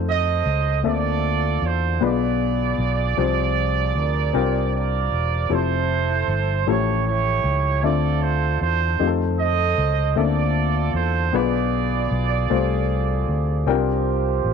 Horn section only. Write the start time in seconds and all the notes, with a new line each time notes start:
0.09 A4 C5 D#5
0.88 F4 A4 D5
1.65 C5
2.04 F4 G#4 D5
3.98 D4 F4 A#4
4.76 F4 A#4 D5
5.52 E4 A4 C5
6.68 E4 G4 C#5
7.07 E4 G4 C#5
7.84 F4 A4 D5
8.21 C5
8.61 C5
9.38 A4 C5 D#5
10.17 F4 A4 D5
10.94 C5
11.34 F4 G#4 D5
13.69 F4 G4 C5